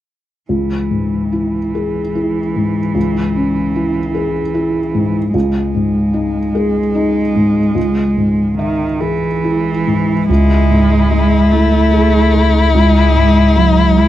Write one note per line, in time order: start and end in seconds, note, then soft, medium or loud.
0.49 2.91 C#2 soft
0.49 5.30 E3 soft
0.91 1.58 G#2 soft
1.32 1.99 E4 soft
1.75 2.40 G#4 soft
2.15 2.80 E4 soft
2.56 3.20 G#2 soft
2.95 5.30 C#2 soft
3.35 3.99 C#4 soft
3.75 4.39 E4 soft
4.15 4.79 G#4 soft
4.54 5.18 E4 soft
4.95 5.34 G#2 soft
5.34 7.72 C#2 medium
5.34 8.55 G#3 medium
5.74 6.38 G#2 soft
6.14 6.78 D#4 soft
6.55 7.19 G#4 soft
6.95 7.60 D#4 soft
7.36 7.76 G#2 soft
7.75 10.24 C#2 soft
8.17 8.84 G#2 soft
8.58 9.01 D#3 medium
8.58 9.26 E5 soft
9.00 10.29 E3 medium
9.00 9.69 G#4 soft
9.44 10.13 E4 soft
9.87 10.29 G#2 soft
10.28 14.08 C#2 medium
10.28 12.71 C#2 soft
10.28 11.54 G#3 medium
10.28 14.08 E4 soft
10.71 11.35 G#2 soft
11.11 11.76 G#3 soft
11.51 12.74 A3 medium
11.51 12.17 E4 soft
11.92 12.32 G#4 soft
12.33 12.99 G#4 soft
12.75 14.08 C#2 soft
12.75 13.58 G#3 medium
13.15 13.81 G#2 soft
13.56 13.98 F#3 medium
13.56 14.08 G#3 soft
13.97 14.08 G#3 medium
13.97 14.08 E4 soft